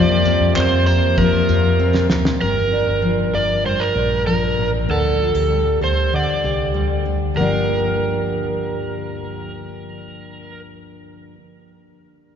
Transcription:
Already playing: fingered electric bass F2, harmonium C3 F3 A#3 F4, steel-string acoustic guitar F3 C4 A#4, upright piano A#3 C4 F4 C5, electric slide guitar D5
0.25 steel-string acoustic guitar C4, tambourine
0.41 fingered electric bass F2
0.56 fingered electric bass F2, steel-string acoustic guitar C4, electric slide guitar C5, clap
0.86 steel-string acoustic guitar A#4, electric slide guitar C5, tambourine
1.18 steel-string acoustic guitar F3, electric slide guitar A#4, kick
1.49 fingered electric bass F2, steel-string acoustic guitar F4, tambourine
1.80 steel-string acoustic guitar C4
1.95 snare
2.10 fingered electric bass D2, steel-string acoustic guitar A#4, snare
2.25 snare
2.41 fingered electric bass G1, steel-string acoustic guitar G2, electric slide guitar A#4
2.72 steel-string acoustic guitar D4
2.87 fingered electric bass G1
3.02 steel-string acoustic guitar F3
3.33 fingered electric bass G1, steel-string acoustic guitar A#4, electric slide guitar D5
3.65 steel-string acoustic guitar G2, electric slide guitar C5
3.80 electric slide guitar A#4
3.94 fingered electric bass A#1, steel-string acoustic guitar D4
4.26 steel-string acoustic guitar F3, electric slide guitar A#4
4.58 fingered electric bass A1, steel-string acoustic guitar A#3
4.88 fingered electric bass D2, steel-string acoustic guitar D3, electric slide guitar A4
5.20 steel-string acoustic guitar F4
5.35 fingered electric bass D2, steel-string acoustic guitar G4
5.50 steel-string acoustic guitar G3
5.81 fingered electric bass D2, steel-string acoustic guitar A4, electric slide guitar C5
6.13 steel-string acoustic guitar D3, electric slide guitar D5
6.44 fingered electric bass C2, steel-string acoustic guitar G4
6.74 fingered electric bass D2, steel-string acoustic guitar G3
7.06 fingered electric bass D2, steel-string acoustic guitar D4
7.34 fingered electric bass G1, steel-string acoustic guitar G2 D3 F3, electric slide guitar A#4
7.39 steel-string acoustic guitar A#3 D4 G4

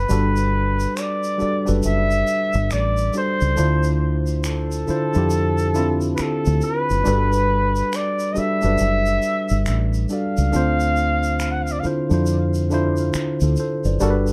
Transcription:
Already playing: flugelhorn B4
0.09 fingered electric bass G1, tine electric piano G3 D4 F#4 A4, shaker
0.13 tine electric piano B4
0.36 shaker
0.80 shaker
0.97 flugelhorn D5, finger snap, shaker
1.24 shaker
1.38 tine electric piano G3 D4 F#4 A4, muted fingered electric bass stroke, shaker
1.42 tine electric piano D5
1.65 tine electric piano G3 D4 F#4 A4 B4, shaker
1.69 fingered electric bass F#1
1.83 fingered electric bass F#1, flugelhorn E5, shaker
2.11 shaker
2.27 shaker
2.53 fingered electric bass G1, shaker
2.71 fingered electric bass A1, flugelhorn D5, finger snap, shaker
2.97 shaker
3.13 tine electric piano G3 D4 F#4 A4 D5, flugelhorn C5, shaker
3.41 fingered electric bass C#2, shaker
3.56 fingered electric bass D2, tine electric piano D3 D4 E4 F4 C5, shaker
3.83 shaker
4.27 shaker
4.44 flugelhorn A4, finger snap, shaker
4.72 shaker
4.87 tine electric piano D3 D4 E4 F4 C5, muted fingered electric bass stroke, shaker
5.14 fingered electric bass F2, tine electric piano D3 D4 E4 F4 G4, shaker
5.30 shaker
5.58 shaker
5.74 tine electric piano D3 C4 D4 E4 F4, shaker
6.01 shaker
6.15 flugelhorn B4, finger snap, shaker
6.20 flugelhorn A4, muted fingered electric bass stroke
6.46 fingered electric bass D2, shaker
6.61 flugelhorn B4, shaker
6.90 fingered electric bass F#1, shaker
7.04 fingered electric bass G1, tine electric piano G3 D4 F#4 A4, shaker
7.08 tine electric piano B4
7.33 shaker
7.76 shaker
7.93 flugelhorn D5, finger snap, shaker
8.19 shaker
8.32 tine electric piano G3 D4, flugelhorn D#5, shaker
8.36 tine electric piano F#4 A4 D5, flugelhorn E5, muted fingered electric bass stroke
8.62 fingered electric bass F#1, tine electric piano G3 D4 F#4 A4 B4, shaker
8.78 fingered electric bass F#1, shaker
9.06 shaker
9.22 shaker
9.49 fingered electric bass G1, shaker
9.66 fingered electric bass A1, finger snap, shaker
9.94 shaker
10.09 tine electric piano G3 D4 F#4 A4 D5, flugelhorn F5, shaker
10.37 fingered electric bass C#2, shaker
10.52 fingered electric bass D2, tine electric piano D3 C4 D4 F4, shaker
10.56 tine electric piano C5
10.80 shaker
10.96 shaker
11.23 shaker
11.40 finger snap, shaker
11.51 flugelhorn F#5
11.62 flugelhorn F5
11.67 shaker
11.72 flugelhorn D5
11.80 tine electric piano D3, flugelhorn F5
11.84 tine electric piano D4 E4 F4 C5, muted fingered electric bass stroke, shaker
12.09 fingered electric bass F2, tine electric piano D3 D4 E4 F4, shaker
12.14 tine electric piano C5
12.26 shaker
12.54 shaker
12.70 tine electric piano D3 D4 E4 F4, shaker
12.74 tine electric piano C5
12.97 shaker
13.14 finger snap, muted fingered electric bass stroke, shaker
13.41 fingered electric bass D2, tine electric piano F4 A4, shaker
13.56 tine electric piano A4 C5, shaker
13.84 fingered electric bass F#1, tine electric piano B4 D5, shaker
14.00 fingered electric bass G1, tine electric piano G3 D4 F#4 A4 A#4, shaker
14.10 tine electric piano B4
14.27 shaker

